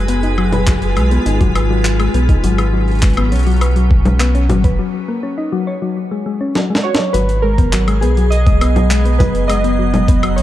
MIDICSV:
0, 0, Header, 1, 7, 480
1, 0, Start_track
1, 0, Tempo, 588235
1, 68, Time_signature, 4, 2, 24, 8
1, 8507, End_track
2, 0, Start_track
2, 0, Title_t, "Synth texture"
2, 0, Program_c, 0, 99
2, 0, Note_on_c, 0, 68, 90
2, 0, Note_on_c, 0, 80, 87
2, 3908, Note_off_c, 0, 68, 0
2, 3908, Note_off_c, 0, 80, 0
2, 8507, End_track
3, 0, Start_track
3, 0, Title_t, "Synth keys"
3, 0, Program_c, 1, 88
3, 5577, Note_on_c, 1, 73, 96
3, 5818, Note_on_c, 1, 71, 97
3, 5830, Note_off_c, 1, 73, 0
3, 6057, Note_on_c, 1, 70, 101
3, 6070, Note_off_c, 1, 71, 0
3, 6536, Note_on_c, 1, 68, 90
3, 6557, Note_off_c, 1, 70, 0
3, 6776, Note_on_c, 1, 75, 114
3, 6789, Note_off_c, 1, 68, 0
3, 7495, Note_on_c, 1, 71, 91
3, 7524, Note_off_c, 1, 75, 0
3, 7734, Note_on_c, 1, 75, 108
3, 7749, Note_off_c, 1, 71, 0
3, 8456, Note_on_c, 1, 73, 89
3, 8483, Note_off_c, 1, 75, 0
3, 8507, Note_off_c, 1, 73, 0
3, 8507, End_track
4, 0, Start_track
4, 0, Title_t, "Ambient pad"
4, 0, Program_c, 2, 92
4, 0, Note_on_c, 2, 56, 83
4, 0, Note_on_c, 2, 71, 92
4, 68, Note_on_c, 2, 65, 77
4, 1955, Note_off_c, 2, 56, 0
4, 1969, Note_off_c, 2, 65, 0
4, 1988, Note_on_c, 2, 54, 86
4, 1988, Note_on_c, 2, 61, 75
4, 3875, Note_off_c, 2, 71, 0
4, 3889, Note_off_c, 2, 54, 0
4, 3889, Note_off_c, 2, 61, 0
4, 5827, Note_on_c, 2, 54, 89
4, 5827, Note_on_c, 2, 68, 91
4, 5828, Note_on_c, 2, 59, 78
4, 7728, Note_off_c, 2, 68, 0
4, 7747, Note_on_c, 2, 66, 96
4, 8507, Note_off_c, 2, 54, 0
4, 8507, Note_off_c, 2, 59, 0
4, 8507, Note_off_c, 2, 66, 0
4, 8507, End_track
5, 0, Start_track
5, 0, Title_t, "Synth arpeggio sound"
5, 0, Program_c, 3, 84
5, 69, Note_on_c, 3, 59, 83
5, 182, Note_off_c, 3, 59, 0
5, 188, Note_on_c, 3, 63, 79
5, 291, Note_off_c, 3, 63, 0
5, 308, Note_on_c, 3, 54, 101
5, 411, Note_off_c, 3, 54, 0
5, 429, Note_on_c, 3, 71, 75
5, 490, Note_off_c, 3, 71, 0
5, 549, Note_on_c, 3, 54, 82
5, 662, Note_off_c, 3, 54, 0
5, 788, Note_on_c, 3, 56, 79
5, 891, Note_off_c, 3, 56, 0
5, 908, Note_on_c, 3, 59, 77
5, 1022, Note_off_c, 3, 59, 0
5, 1028, Note_on_c, 3, 63, 84
5, 1131, Note_off_c, 3, 63, 0
5, 1148, Note_on_c, 3, 54, 97
5, 1251, Note_off_c, 3, 54, 0
5, 1268, Note_on_c, 3, 71, 80
5, 1330, Note_off_c, 3, 71, 0
5, 1389, Note_on_c, 3, 54, 78
5, 1502, Note_off_c, 3, 54, 0
5, 1628, Note_on_c, 3, 56, 82
5, 1731, Note_off_c, 3, 56, 0
5, 1749, Note_on_c, 3, 59, 76
5, 1862, Note_off_c, 3, 59, 0
5, 1869, Note_on_c, 3, 63, 74
5, 1972, Note_off_c, 3, 63, 0
5, 1989, Note_on_c, 3, 54, 99
5, 2092, Note_off_c, 3, 54, 0
5, 2108, Note_on_c, 3, 71, 77
5, 2170, Note_off_c, 3, 71, 0
5, 2228, Note_on_c, 3, 54, 76
5, 2342, Note_off_c, 3, 54, 0
5, 2468, Note_on_c, 3, 56, 82
5, 2571, Note_off_c, 3, 56, 0
5, 2589, Note_on_c, 3, 59, 81
5, 2702, Note_off_c, 3, 59, 0
5, 2709, Note_on_c, 3, 61, 76
5, 2811, Note_off_c, 3, 61, 0
5, 2828, Note_on_c, 3, 54, 99
5, 2931, Note_off_c, 3, 54, 0
5, 2949, Note_on_c, 3, 71, 86
5, 3010, Note_off_c, 3, 71, 0
5, 3068, Note_on_c, 3, 54, 74
5, 3182, Note_off_c, 3, 54, 0
5, 3308, Note_on_c, 3, 56, 74
5, 3411, Note_off_c, 3, 56, 0
5, 3428, Note_on_c, 3, 59, 83
5, 3542, Note_off_c, 3, 59, 0
5, 3548, Note_on_c, 3, 61, 82
5, 3651, Note_off_c, 3, 61, 0
5, 3668, Note_on_c, 3, 54, 101
5, 3771, Note_off_c, 3, 54, 0
5, 3788, Note_on_c, 3, 71, 78
5, 3850, Note_off_c, 3, 71, 0
5, 3908, Note_on_c, 3, 54, 81
5, 4022, Note_off_c, 3, 54, 0
5, 4148, Note_on_c, 3, 58, 79
5, 4251, Note_off_c, 3, 58, 0
5, 4268, Note_on_c, 3, 61, 77
5, 4382, Note_off_c, 3, 61, 0
5, 4388, Note_on_c, 3, 63, 88
5, 4491, Note_off_c, 3, 63, 0
5, 4508, Note_on_c, 3, 54, 102
5, 4611, Note_off_c, 3, 54, 0
5, 4628, Note_on_c, 3, 73, 75
5, 4690, Note_off_c, 3, 73, 0
5, 4748, Note_on_c, 3, 54, 77
5, 4862, Note_off_c, 3, 54, 0
5, 4988, Note_on_c, 3, 56, 73
5, 5091, Note_off_c, 3, 56, 0
5, 5108, Note_on_c, 3, 56, 76
5, 5211, Note_off_c, 3, 56, 0
5, 5228, Note_on_c, 3, 61, 79
5, 5331, Note_off_c, 3, 61, 0
5, 5347, Note_on_c, 3, 54, 82
5, 5462, Note_off_c, 3, 54, 0
5, 5468, Note_on_c, 3, 56, 85
5, 5571, Note_off_c, 3, 56, 0
5, 5588, Note_on_c, 3, 66, 77
5, 5650, Note_off_c, 3, 66, 0
5, 5708, Note_on_c, 3, 54, 76
5, 5770, Note_off_c, 3, 54, 0
5, 5827, Note_on_c, 3, 54, 82
5, 5889, Note_off_c, 3, 54, 0
5, 6067, Note_on_c, 3, 56, 78
5, 6129, Note_off_c, 3, 56, 0
5, 6187, Note_on_c, 3, 59, 78
5, 6250, Note_off_c, 3, 59, 0
5, 6307, Note_on_c, 3, 54, 106
5, 6422, Note_off_c, 3, 54, 0
5, 6428, Note_on_c, 3, 56, 81
5, 6490, Note_off_c, 3, 56, 0
5, 6548, Note_on_c, 3, 59, 83
5, 6651, Note_off_c, 3, 59, 0
5, 6668, Note_on_c, 3, 54, 82
5, 6730, Note_off_c, 3, 54, 0
5, 6907, Note_on_c, 3, 56, 74
5, 6970, Note_off_c, 3, 56, 0
5, 7028, Note_on_c, 3, 59, 80
5, 7090, Note_off_c, 3, 59, 0
5, 7148, Note_on_c, 3, 54, 104
5, 7262, Note_off_c, 3, 54, 0
5, 7268, Note_on_c, 3, 56, 83
5, 7330, Note_off_c, 3, 56, 0
5, 7388, Note_on_c, 3, 59, 82
5, 7491, Note_off_c, 3, 59, 0
5, 7508, Note_on_c, 3, 54, 80
5, 7570, Note_off_c, 3, 54, 0
5, 7748, Note_on_c, 3, 56, 82
5, 7810, Note_off_c, 3, 56, 0
5, 7868, Note_on_c, 3, 59, 78
5, 7930, Note_off_c, 3, 59, 0
5, 7988, Note_on_c, 3, 54, 106
5, 8102, Note_off_c, 3, 54, 0
5, 8108, Note_on_c, 3, 56, 74
5, 8170, Note_off_c, 3, 56, 0
5, 8228, Note_on_c, 3, 59, 89
5, 8331, Note_off_c, 3, 59, 0
5, 8349, Note_on_c, 3, 54, 79
5, 8410, Note_off_c, 3, 54, 0
5, 8507, End_track
6, 0, Start_track
6, 0, Title_t, "Analog synth bass"
6, 0, Program_c, 4, 38
6, 0, Note_on_c, 4, 30, 84
6, 788, Note_on_c, 4, 35, 92
6, 800, Note_off_c, 4, 30, 0
6, 970, Note_off_c, 4, 35, 0
6, 1028, Note_on_c, 4, 32, 97
6, 1702, Note_off_c, 4, 32, 0
6, 1748, Note_on_c, 4, 35, 89
6, 1930, Note_off_c, 4, 35, 0
6, 1989, Note_on_c, 4, 32, 99
6, 2708, Note_on_c, 4, 35, 91
6, 2720, Note_off_c, 4, 32, 0
6, 3668, Note_on_c, 4, 32, 84
6, 3680, Note_off_c, 4, 35, 0
6, 3908, Note_off_c, 4, 32, 0
6, 5828, Note_on_c, 4, 32, 96
6, 6548, Note_on_c, 4, 35, 92
6, 6560, Note_off_c, 4, 32, 0
6, 7508, Note_on_c, 4, 30, 85
6, 7520, Note_off_c, 4, 35, 0
6, 8468, Note_on_c, 4, 35, 95
6, 8480, Note_off_c, 4, 30, 0
6, 8507, Note_off_c, 4, 35, 0
6, 8507, End_track
7, 0, Start_track
7, 0, Title_t, "Drums"
7, 68, Note_on_c, 9, 42, 88
7, 150, Note_off_c, 9, 42, 0
7, 188, Note_on_c, 9, 42, 37
7, 270, Note_off_c, 9, 42, 0
7, 308, Note_on_c, 9, 76, 50
7, 390, Note_off_c, 9, 76, 0
7, 428, Note_on_c, 9, 42, 38
7, 428, Note_on_c, 9, 64, 85
7, 510, Note_off_c, 9, 42, 0
7, 510, Note_off_c, 9, 64, 0
7, 548, Note_on_c, 9, 36, 117
7, 548, Note_on_c, 9, 39, 117
7, 548, Note_on_c, 9, 42, 83
7, 630, Note_off_c, 9, 36, 0
7, 630, Note_off_c, 9, 39, 0
7, 630, Note_off_c, 9, 42, 0
7, 668, Note_on_c, 9, 42, 37
7, 750, Note_off_c, 9, 42, 0
7, 788, Note_on_c, 9, 42, 61
7, 788, Note_on_c, 9, 76, 51
7, 870, Note_off_c, 9, 42, 0
7, 870, Note_off_c, 9, 76, 0
7, 908, Note_on_c, 9, 42, 39
7, 990, Note_off_c, 9, 42, 0
7, 1029, Note_on_c, 9, 42, 83
7, 1110, Note_off_c, 9, 42, 0
7, 1148, Note_on_c, 9, 36, 100
7, 1149, Note_on_c, 9, 42, 38
7, 1230, Note_off_c, 9, 36, 0
7, 1230, Note_off_c, 9, 42, 0
7, 1269, Note_on_c, 9, 42, 62
7, 1269, Note_on_c, 9, 76, 79
7, 1350, Note_off_c, 9, 42, 0
7, 1350, Note_off_c, 9, 76, 0
7, 1509, Note_on_c, 9, 39, 112
7, 1509, Note_on_c, 9, 42, 84
7, 1590, Note_off_c, 9, 39, 0
7, 1590, Note_off_c, 9, 42, 0
7, 1628, Note_on_c, 9, 42, 35
7, 1628, Note_on_c, 9, 76, 51
7, 1710, Note_off_c, 9, 42, 0
7, 1710, Note_off_c, 9, 76, 0
7, 1749, Note_on_c, 9, 42, 65
7, 1830, Note_off_c, 9, 42, 0
7, 1868, Note_on_c, 9, 36, 110
7, 1869, Note_on_c, 9, 42, 39
7, 1950, Note_off_c, 9, 36, 0
7, 1950, Note_off_c, 9, 42, 0
7, 1989, Note_on_c, 9, 42, 87
7, 2070, Note_off_c, 9, 42, 0
7, 2108, Note_on_c, 9, 42, 38
7, 2108, Note_on_c, 9, 76, 54
7, 2190, Note_off_c, 9, 42, 0
7, 2190, Note_off_c, 9, 76, 0
7, 2348, Note_on_c, 9, 42, 18
7, 2378, Note_off_c, 9, 42, 0
7, 2378, Note_on_c, 9, 42, 20
7, 2409, Note_off_c, 9, 42, 0
7, 2409, Note_on_c, 9, 42, 22
7, 2438, Note_off_c, 9, 42, 0
7, 2438, Note_on_c, 9, 42, 25
7, 2468, Note_on_c, 9, 36, 102
7, 2469, Note_off_c, 9, 42, 0
7, 2469, Note_on_c, 9, 39, 111
7, 2469, Note_on_c, 9, 42, 88
7, 2499, Note_off_c, 9, 42, 0
7, 2499, Note_on_c, 9, 42, 30
7, 2528, Note_off_c, 9, 42, 0
7, 2528, Note_on_c, 9, 42, 31
7, 2550, Note_off_c, 9, 36, 0
7, 2550, Note_off_c, 9, 39, 0
7, 2559, Note_off_c, 9, 42, 0
7, 2559, Note_on_c, 9, 42, 35
7, 2588, Note_off_c, 9, 42, 0
7, 2588, Note_on_c, 9, 42, 39
7, 2588, Note_on_c, 9, 76, 78
7, 2670, Note_off_c, 9, 42, 0
7, 2670, Note_off_c, 9, 76, 0
7, 2708, Note_on_c, 9, 42, 61
7, 2738, Note_off_c, 9, 42, 0
7, 2738, Note_on_c, 9, 42, 51
7, 2768, Note_off_c, 9, 42, 0
7, 2768, Note_on_c, 9, 42, 40
7, 2798, Note_off_c, 9, 42, 0
7, 2798, Note_on_c, 9, 42, 33
7, 2828, Note_off_c, 9, 42, 0
7, 2828, Note_on_c, 9, 42, 37
7, 2858, Note_off_c, 9, 42, 0
7, 2858, Note_on_c, 9, 42, 23
7, 2868, Note_off_c, 9, 42, 0
7, 2868, Note_on_c, 9, 42, 30
7, 2888, Note_off_c, 9, 42, 0
7, 2888, Note_on_c, 9, 42, 19
7, 2909, Note_off_c, 9, 42, 0
7, 2909, Note_on_c, 9, 42, 25
7, 2919, Note_off_c, 9, 42, 0
7, 2919, Note_on_c, 9, 42, 16
7, 2948, Note_off_c, 9, 42, 0
7, 2948, Note_on_c, 9, 42, 83
7, 2948, Note_on_c, 9, 76, 53
7, 3029, Note_off_c, 9, 42, 0
7, 3029, Note_on_c, 9, 42, 14
7, 3030, Note_off_c, 9, 76, 0
7, 3068, Note_off_c, 9, 42, 0
7, 3068, Note_on_c, 9, 42, 39
7, 3150, Note_off_c, 9, 42, 0
7, 3188, Note_on_c, 9, 36, 110
7, 3270, Note_off_c, 9, 36, 0
7, 3309, Note_on_c, 9, 42, 36
7, 3309, Note_on_c, 9, 64, 86
7, 3390, Note_off_c, 9, 42, 0
7, 3390, Note_off_c, 9, 64, 0
7, 3428, Note_on_c, 9, 39, 111
7, 3428, Note_on_c, 9, 42, 89
7, 3428, Note_on_c, 9, 76, 53
7, 3510, Note_off_c, 9, 39, 0
7, 3510, Note_off_c, 9, 42, 0
7, 3510, Note_off_c, 9, 76, 0
7, 3548, Note_on_c, 9, 42, 38
7, 3630, Note_off_c, 9, 42, 0
7, 3668, Note_on_c, 9, 42, 65
7, 3668, Note_on_c, 9, 64, 99
7, 3750, Note_off_c, 9, 42, 0
7, 3750, Note_off_c, 9, 64, 0
7, 3788, Note_on_c, 9, 36, 97
7, 3788, Note_on_c, 9, 42, 39
7, 3870, Note_off_c, 9, 36, 0
7, 3870, Note_off_c, 9, 42, 0
7, 5348, Note_on_c, 9, 38, 68
7, 5430, Note_off_c, 9, 38, 0
7, 5508, Note_on_c, 9, 38, 76
7, 5590, Note_off_c, 9, 38, 0
7, 5668, Note_on_c, 9, 38, 100
7, 5749, Note_off_c, 9, 38, 0
7, 5828, Note_on_c, 9, 42, 96
7, 5909, Note_off_c, 9, 42, 0
7, 5948, Note_on_c, 9, 42, 42
7, 6030, Note_off_c, 9, 42, 0
7, 6188, Note_on_c, 9, 36, 106
7, 6188, Note_on_c, 9, 42, 42
7, 6269, Note_off_c, 9, 36, 0
7, 6269, Note_off_c, 9, 42, 0
7, 6308, Note_on_c, 9, 39, 118
7, 6308, Note_on_c, 9, 42, 98
7, 6389, Note_off_c, 9, 39, 0
7, 6389, Note_off_c, 9, 42, 0
7, 6428, Note_on_c, 9, 42, 42
7, 6428, Note_on_c, 9, 76, 56
7, 6509, Note_off_c, 9, 42, 0
7, 6509, Note_off_c, 9, 76, 0
7, 6548, Note_on_c, 9, 42, 68
7, 6630, Note_off_c, 9, 42, 0
7, 6668, Note_on_c, 9, 42, 44
7, 6750, Note_off_c, 9, 42, 0
7, 6788, Note_on_c, 9, 42, 92
7, 6870, Note_off_c, 9, 42, 0
7, 6908, Note_on_c, 9, 36, 119
7, 6908, Note_on_c, 9, 42, 44
7, 6989, Note_off_c, 9, 36, 0
7, 6990, Note_off_c, 9, 42, 0
7, 7028, Note_on_c, 9, 42, 73
7, 7028, Note_on_c, 9, 76, 83
7, 7110, Note_off_c, 9, 42, 0
7, 7110, Note_off_c, 9, 76, 0
7, 7148, Note_on_c, 9, 42, 38
7, 7148, Note_on_c, 9, 64, 76
7, 7230, Note_off_c, 9, 42, 0
7, 7230, Note_off_c, 9, 64, 0
7, 7268, Note_on_c, 9, 39, 120
7, 7268, Note_on_c, 9, 42, 99
7, 7350, Note_off_c, 9, 39, 0
7, 7350, Note_off_c, 9, 42, 0
7, 7389, Note_on_c, 9, 42, 41
7, 7470, Note_off_c, 9, 42, 0
7, 7508, Note_on_c, 9, 36, 107
7, 7508, Note_on_c, 9, 42, 73
7, 7508, Note_on_c, 9, 64, 92
7, 7589, Note_off_c, 9, 36, 0
7, 7590, Note_off_c, 9, 42, 0
7, 7590, Note_off_c, 9, 64, 0
7, 7628, Note_on_c, 9, 42, 42
7, 7710, Note_off_c, 9, 42, 0
7, 7748, Note_on_c, 9, 42, 99
7, 7748, Note_on_c, 9, 76, 56
7, 7830, Note_off_c, 9, 42, 0
7, 7830, Note_off_c, 9, 76, 0
7, 7868, Note_on_c, 9, 42, 42
7, 7950, Note_off_c, 9, 42, 0
7, 8108, Note_on_c, 9, 42, 45
7, 8108, Note_on_c, 9, 64, 83
7, 8190, Note_off_c, 9, 42, 0
7, 8190, Note_off_c, 9, 64, 0
7, 8228, Note_on_c, 9, 36, 126
7, 8228, Note_on_c, 9, 42, 102
7, 8309, Note_off_c, 9, 36, 0
7, 8310, Note_off_c, 9, 42, 0
7, 8348, Note_on_c, 9, 42, 43
7, 8348, Note_on_c, 9, 76, 82
7, 8430, Note_off_c, 9, 42, 0
7, 8430, Note_off_c, 9, 76, 0
7, 8468, Note_on_c, 9, 42, 72
7, 8507, Note_off_c, 9, 42, 0
7, 8507, End_track
0, 0, End_of_file